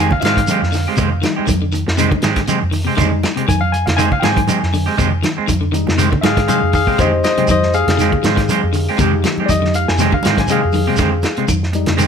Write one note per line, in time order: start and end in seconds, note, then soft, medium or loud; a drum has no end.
0.00 0.11 D#3 medium
0.00 0.12 D#3 medium
0.00 0.94 G3 soft
0.00 0.12 G#3 medium
0.00 0.95 G#3 soft
0.00 0.12 C4 medium
0.00 0.95 D#4 medium
0.00 0.11 G4 medium
0.00 0.11 G#5 medium
0.11 0.22 F5 medium
0.11 muted clean electric guitar stroke soft
0.11 kick medium
0.11 low conga medium
0.21 0.46 G#2 medium
0.21 0.39 D#3 medium
0.21 0.29 F3 medium
0.21 0.23 E5 medium
0.21 closed hi-hat medium
0.21 high conga loud
0.21 shekere soft
0.25 0.39 G#3 medium
0.25 0.39 C4 medium
0.25 0.40 G4 medium
0.25 1.21 F5 medium
0.25 snare medium
0.36 0.50 D#3 medium
0.36 kick medium
0.36 closed hi-hat medium
0.36 claves medium
0.47 0.62 D#3 medium
0.47 0.62 G#3 medium
0.47 0.62 C4 medium
0.47 0.63 G4 medium
0.47 closed hi-hat medium
0.47 high conga medium
0.47 shekere medium
0.62 0.85 F2 medium
0.62 muted clean electric guitar stroke soft
0.62 snare soft
0.72 0.86 D3 medium
0.72 muted clean electric guitar stroke soft
0.72 snare soft
0.72 open hi-hat medium
0.72 shekere soft
0.87 0.97 G#3 medium
0.87 0.97 C4 medium
0.87 0.98 G4 medium
0.87 claves medium
0.97 1.22 F2 loud
0.97 1.11 C3 medium
0.97 1.11 D#3 medium
0.97 1.11 G#3 loud
0.97 1.11 C4 medium
0.97 1.11 G4 medium
0.97 kick medium
0.97 closed hi-hat medium
0.97 low conga medium
0.97 shekere medium
1.12 muted clean electric guitar stroke medium
1.22 1.36 D#3 medium
1.22 1.57 G3 medium
1.22 1.57 G#3 medium
1.22 1.58 D#4 medium
1.22 muted clean electric guitar stroke soft
1.22 snare medium
1.22 closed hi-hat soft
1.22 high conga loud
1.22 claves medium
1.22 shekere soft
1.36 1.48 G#3 medium
1.36 1.48 C4 medium
1.36 1.48 G4 medium
1.36 muted fingered electric bass stroke soft
1.47 1.85 F2 loud
1.47 1.55 D#3 medium
1.47 muted clean electric guitar stroke soft
1.47 kick medium
1.47 closed hi-hat medium
1.47 high conga medium
1.47 claves medium
1.47 shekere medium
1.62 1.68 D3 medium
1.72 1.86 D#3 medium
1.72 muted clean electric guitar stroke soft
1.72 closed hi-hat medium
1.72 shekere soft
1.87 2.11 F2 medium
1.87 muted clean electric guitar stroke soft
1.87 snare medium
1.97 2.05 C3 medium
1.97 2.11 D#3 medium
1.97 2.21 G3 medium
1.97 2.12 G#3 medium
1.97 2.21 G#3 soft
1.97 2.11 C4 loud
1.97 2.21 D#4 medium
1.97 2.10 G4 medium
1.97 closed hi-hat medium
1.97 claves medium
1.97 shekere medium
2.11 2.18 D3 medium
2.11 muted clean electric guitar stroke medium
2.11 kick medium
2.11 low conga medium
2.22 2.47 G#2 medium
2.22 2.30 D#3 medium
2.22 2.39 D#3 medium
2.22 2.39 G#3 medium
2.22 2.39 C4 medium
2.22 2.40 G4 medium
2.22 snare medium
2.22 closed hi-hat medium
2.22 high conga loud
2.22 shekere soft
2.36 2.43 D3 medium
2.36 kick medium
2.36 snare soft
2.36 closed hi-hat medium
2.36 claves medium
2.47 2.62 C3 medium
2.47 2.61 D#3 medium
2.47 2.61 G#3 medium
2.47 2.61 C4 medium
2.47 2.60 G4 medium
2.47 closed hi-hat medium
2.47 high conga medium
2.47 shekere medium
2.62 2.86 F2 medium
2.62 muted clean electric guitar stroke soft
2.71 2.79 D#3 medium
2.71 muted clean electric guitar stroke soft
2.71 open hi-hat medium
2.71 shekere soft
2.85 2.92 C3 medium
2.85 2.96 G#3 medium
2.85 2.97 C4 medium
2.85 2.96 G4 medium
2.85 claves medium
2.97 3.22 F2 loud
2.97 3.11 D3 medium
2.97 3.11 D#3 medium
2.97 3.32 G3 medium
2.97 3.11 G#3 loud
2.97 3.32 G#3 soft
2.97 3.10 C4 loud
2.97 3.32 D#4 medium
2.97 3.10 G4 loud
2.97 kick medium
2.97 closed hi-hat medium
2.97 low conga medium
2.97 shekere medium
3.11 muted clean electric guitar stroke medium
3.23 muted clean electric guitar stroke soft
3.23 snare medium
3.23 closed hi-hat soft
3.23 high conga loud
3.23 claves medium
3.23 shekere soft
3.36 3.42 C3 medium
3.36 3.47 G#3 soft
3.36 3.47 C4 soft
3.36 3.48 G4 medium
3.36 muted fingered electric bass stroke soft
3.36 closed hi-hat soft
3.48 3.85 F2 loud
3.48 3.62 D#3 medium
3.48 3.61 G#5 medium
3.48 muted clean electric guitar stroke soft
3.48 kick medium
3.48 closed hi-hat medium
3.48 high conga medium
3.48 claves medium
3.48 shekere medium
3.61 3.72 F5 loud
3.61 high conga medium
3.72 3.85 G#5 medium
3.72 muted clean electric guitar stroke soft
3.72 closed hi-hat medium
3.72 shekere soft
3.86 4.11 F2 medium
3.86 3.97 F5 medium
3.86 muted clean electric guitar stroke soft
3.86 snare medium
3.86 closed hi-hat medium
3.86 low conga medium
3.97 4.11 D#3 medium
3.97 4.12 D#3 medium
3.97 4.11 G#3 medium
3.97 4.11 C4 medium
3.97 4.10 G4 medium
3.97 4.10 G#5 loud
3.97 closed hi-hat medium
3.97 claves medium
3.97 shekere medium
4.11 4.23 F5 loud
4.11 muted clean electric guitar stroke soft
4.11 kick medium
4.11 low conga medium
4.20 4.38 D#3 medium
4.20 4.30 F3 medium
4.20 4.39 G#3 medium
4.20 4.39 C4 medium
4.20 4.39 G4 medium
4.20 4.23 G5 medium
4.20 closed hi-hat medium
4.20 high conga loud
4.24 4.48 G#2 medium
4.24 5.21 G#5 loud
4.24 snare medium
4.24 shekere soft
4.36 4.50 D#3 medium
4.36 kick medium
4.36 closed hi-hat medium
4.36 high conga medium
4.36 claves medium
4.47 4.61 D#3 medium
4.47 4.61 G#3 medium
4.47 4.61 C4 medium
4.47 4.61 G4 medium
4.47 closed hi-hat medium
4.47 high conga medium
4.47 shekere medium
4.62 4.86 F2 medium
4.62 muted clean electric guitar stroke soft
4.62 snare soft
4.73 4.87 D3 medium
4.73 muted clean electric guitar stroke soft
4.73 open hi-hat medium
4.73 high conga medium
4.73 shekere soft
4.86 4.97 G#3 medium
4.86 4.97 C4 medium
4.86 4.97 G4 medium
4.86 claves medium
4.98 5.22 F2 loud
4.98 5.12 C3 medium
4.98 5.11 D#3 loud
4.98 5.12 G#3 medium
4.98 5.11 C4 medium
4.98 5.11 G4 loud
4.98 kick medium
4.98 closed hi-hat medium
4.98 low conga medium
4.98 shekere medium
5.12 muted clean electric guitar stroke soft
5.23 5.37 D#3 medium
5.23 muted clean electric guitar stroke soft
5.23 snare medium
5.23 closed hi-hat medium
5.23 high conga loud
5.23 claves medium
5.23 shekere soft
5.37 5.48 G#3 medium
5.37 5.48 C4 medium
5.37 muted clean electric guitar stroke medium
5.37 muted fingered electric bass stroke soft
5.47 5.85 F2 medium
5.47 5.55 D#3 medium
5.47 muted clean electric guitar stroke soft
5.47 kick medium
5.47 closed hi-hat medium
5.47 high conga medium
5.47 claves medium
5.47 shekere medium
5.61 5.68 D3 medium
5.61 high conga medium
5.72 5.86 D#3 medium
5.72 6.07 G3 soft
5.72 6.08 G#3 medium
5.72 6.08 D#4 medium
5.72 muted clean electric guitar stroke soft
5.72 closed hi-hat medium
5.72 shekere soft
5.87 6.11 F2 medium
5.87 muted clean electric guitar stroke soft
5.87 snare medium
5.87 low conga medium
5.98 6.05 C3 medium
5.98 6.12 D#3 medium
5.98 6.11 G#3 medium
5.98 6.11 C4 loud
5.98 6.10 G4 loud
5.98 closed hi-hat medium
5.98 claves medium
5.98 shekere medium
6.12 6.18 D3 medium
6.12 muted clean electric guitar stroke soft
6.12 kick medium
6.12 low conga medium
6.21 6.48 G#2 medium
6.21 6.39 D#3 medium
6.21 6.31 D#3 medium
6.21 6.39 G#3 medium
6.21 6.40 G4 medium
6.21 6.47 G#4 medium
6.21 6.24 E5 medium
6.21 muted clean electric guitar stroke medium
6.21 snare medium
6.21 closed hi-hat medium
6.21 high conga loud
6.21 shekere soft
6.26 6.48 F5 loud
6.37 6.43 D3 medium
6.37 kick medium
6.37 snare soft
6.37 closed hi-hat medium
6.37 claves medium
6.47 6.63 C3 medium
6.47 6.61 D#3 medium
6.47 6.71 G3 soft
6.47 6.61 G#3 medium
6.47 6.71 G#3 soft
6.47 6.61 C4 medium
6.47 6.71 D#4 soft
6.47 6.60 G4 medium
6.47 6.72 G#4 medium
6.47 6.73 F5 medium
6.47 closed hi-hat medium
6.47 high conga medium
6.47 shekere medium
6.61 6.86 F2 medium
6.61 muted clean electric guitar stroke soft
6.73 6.81 D#3 medium
6.73 6.98 G#4 medium
6.73 6.99 F5 medium
6.73 muted clean electric guitar stroke soft
6.73 kick medium
6.73 open hi-hat medium
6.73 shekere soft
6.87 6.94 C3 medium
6.87 6.99 G#3 soft
6.87 6.99 C4 medium
6.87 6.99 G4 medium
6.87 kick medium
6.87 claves medium
6.98 7.23 F2 loud
6.98 7.12 D3 medium
6.98 7.13 D#3 medium
6.98 8.95 G#3 medium
6.98 7.13 G#3 medium
6.98 7.13 C4 medium
6.98 8.95 D#4 medium
6.98 8.95 G4 soft
6.98 7.12 G4 medium
6.98 7.22 C5 medium
6.98 7.23 D#5 medium
6.98 kick medium
6.98 closed hi-hat medium
6.98 low conga medium
6.98 shekere medium
7.24 7.47 C5 medium
7.24 7.48 D#5 medium
7.24 muted clean electric guitar stroke soft
7.24 snare medium
7.24 closed hi-hat medium
7.24 high conga medium
7.24 claves medium
7.24 shekere soft
7.37 7.44 C3 medium
7.37 7.49 G#3 medium
7.37 7.49 C4 medium
7.37 7.49 G4 medium
7.37 muted fingered electric bass stroke soft
7.37 closed hi-hat soft
7.37 high conga medium
7.48 7.85 F2 medium
7.48 7.64 D#3 medium
7.48 7.73 C5 medium
7.48 7.74 D#5 loud
7.48 muted clean electric guitar stroke soft
7.48 kick medium
7.48 closed hi-hat medium
7.48 high conga medium
7.48 claves medium
7.48 shekere medium
7.63 snare soft
7.74 9.20 G#4 medium
7.74 9.20 F5 loud
7.74 muted clean electric guitar stroke soft
7.74 closed hi-hat medium
7.74 shekere soft
7.87 8.11 F2 medium
7.87 muted clean electric guitar stroke soft
7.87 snare medium
7.87 closed hi-hat medium
7.87 low conga medium
7.97 8.12 D#3 medium
7.97 8.13 D#3 medium
7.97 8.13 G#3 medium
7.97 8.13 C4 medium
7.97 8.12 G4 medium
7.97 snare soft
7.97 closed hi-hat medium
7.97 claves medium
7.97 shekere medium
8.12 muted clean electric guitar stroke soft
8.12 kick medium
8.12 low conga medium
8.23 8.47 G#2 medium
8.23 8.40 D#3 medium
8.23 8.31 F3 medium
8.23 8.40 G#3 medium
8.23 8.40 C4 medium
8.23 8.41 G4 medium
8.23 snare medium
8.23 closed hi-hat soft
8.23 high conga loud
8.23 shekere soft
8.36 8.50 D#3 medium
8.36 kick medium
8.36 snare soft
8.36 closed hi-hat medium
8.36 claves medium
8.49 8.63 D#3 medium
8.49 8.63 G#3 medium
8.49 8.63 C4 medium
8.49 8.63 G4 medium
8.49 closed hi-hat medium
8.49 high conga medium
8.49 shekere medium
8.63 8.86 F2 loud
8.63 muted clean electric guitar stroke medium
8.73 8.87 D3 medium
8.73 muted clean electric guitar stroke medium
8.73 open hi-hat medium
8.73 shekere soft
8.89 8.99 G#3 medium
8.89 9.00 C4 medium
8.89 9.00 G4 medium
8.89 claves medium
8.98 9.22 F2 loud
8.98 9.12 C3 medium
8.98 9.13 D#3 medium
8.98 10.95 G#3 medium
8.98 9.13 G#3 medium
8.98 10.95 D#4 medium
8.98 10.94 G4 medium
8.98 9.13 G4 loud
8.98 muted clean electric guitar stroke loud
8.98 kick loud
8.98 closed hi-hat medium
8.98 low conga medium
8.98 shekere medium
9.14 muted clean electric guitar stroke soft
9.24 9.38 D#3 medium
9.24 muted clean electric guitar stroke soft
9.24 snare medium
9.24 closed hi-hat medium
9.24 high conga medium
9.24 claves medium
9.24 shekere soft
9.37 9.50 C4 medium
9.37 9.50 G4 medium
9.37 muted fingered electric bass stroke soft
9.37 high conga medium
9.41 9.50 G#3 soft
9.46 9.85 F2 loud
9.46 9.57 D#3 medium
9.46 9.49 D5 medium
9.46 kick medium
9.46 high conga medium
9.46 shekere medium
9.50 9.74 D#5 loud
9.50 muted clean electric guitar stroke soft
9.50 closed hi-hat medium
9.50 claves medium
9.62 9.69 D3 medium
9.62 snare soft
9.62 high conga medium
9.74 9.87 F5 loud
9.74 muted clean electric guitar stroke soft
9.74 closed hi-hat medium
9.74 shekere soft
9.88 10.12 F2 medium
9.88 10.12 G#5 medium
9.88 muted clean electric guitar stroke soft
9.88 snare medium
9.98 10.06 C3 medium
9.98 10.13 D#3 medium
9.98 10.13 G#3 medium
9.98 10.12 C4 medium
9.98 10.12 G4 medium
9.98 snare soft
9.98 closed hi-hat medium
9.98 claves medium
9.98 shekere medium
10.12 10.19 D3 medium
10.12 10.37 F5 medium
10.12 muted clean electric guitar stroke soft
10.12 kick medium
10.12 low conga medium
10.23 10.49 G#2 medium
10.23 10.32 D#3 medium
10.23 10.40 D#3 medium
10.23 10.40 G#3 medium
10.23 10.41 C4 medium
10.23 10.41 G4 medium
10.23 snare medium
10.23 closed hi-hat medium
10.23 high conga loud
10.23 shekere soft
10.36 10.44 D3 medium
10.36 10.49 G#5 medium
10.36 kick medium
10.36 snare soft
10.36 closed hi-hat medium
10.36 high conga medium
10.36 claves medium
10.48 10.63 C3 medium
10.48 10.63 D#3 medium
10.48 10.63 G#3 medium
10.48 10.62 C4 medium
10.48 10.62 G4 medium
10.48 11.46 G#4 medium
10.48 closed hi-hat medium
10.48 high conga medium
10.48 shekere medium
10.52 11.47 F5 medium
10.63 10.87 F2 loud
10.63 muted clean electric guitar stroke soft
10.72 10.81 D#3 medium
10.72 muted clean electric guitar stroke soft
10.72 open hi-hat medium
10.72 high conga medium
10.72 shekere soft
10.87 10.94 C3 medium
10.87 10.98 G#3 medium
10.87 10.98 C4 medium
10.87 10.98 G4 medium
10.87 claves medium
10.97 11.23 F2 loud
10.97 11.13 D3 loud
10.97 11.12 D#3 medium
10.97 11.12 G#3 medium
10.97 11.12 C4 loud
10.97 11.11 G4 medium
10.97 kick medium
10.97 snare soft
10.97 closed hi-hat medium
10.97 low conga medium
10.97 shekere medium
11.12 muted clean electric guitar stroke soft
11.23 muted clean electric guitar stroke medium
11.23 snare medium
11.23 closed hi-hat soft
11.23 high conga medium
11.23 claves medium
11.23 shekere soft
11.37 11.44 C3 medium
11.37 11.47 G#3 medium
11.37 11.47 C4 medium
11.37 muted fingered electric bass stroke soft
11.37 closed hi-hat soft
11.48 11.85 F2 loud
11.48 11.62 D#3 medium
11.48 muted clean electric guitar stroke soft
11.48 kick medium
11.48 closed hi-hat medium
11.48 high conga medium
11.48 claves medium
11.48 shekere medium
11.63 snare soft
11.73 12.07 G3 medium
11.73 12.07 G#3 medium
11.73 12.07 D#4 medium
11.73 muted clean electric guitar stroke soft
11.73 closed hi-hat medium
11.73 shekere soft
11.86 12.07 F2 medium
11.86 muted clean electric guitar stroke medium
11.86 snare medium
11.86 closed hi-hat medium
11.86 low conga medium
11.97 12.07 D#3 medium
11.97 12.07 G#3 medium
11.97 12.07 C4 medium
11.97 12.07 G4 medium
11.97 closed hi-hat medium
11.97 claves medium
11.97 shekere medium